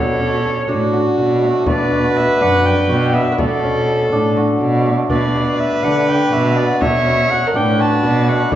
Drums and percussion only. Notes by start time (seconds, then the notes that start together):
0.69 frame drum
0.94 frame drum
1.18 frame drum
1.66 frame drum
2.40 frame drum
2.90 frame drum
3.39 frame drum
3.63 frame drum
4.12 frame drum
4.37 frame drum
4.62 frame drum
5.10 frame drum
5.83 frame drum
6.09 frame drum
6.33 frame drum
6.82 frame drum
7.55 frame drum
7.79 frame drum
8.03 frame drum
8.52 frame drum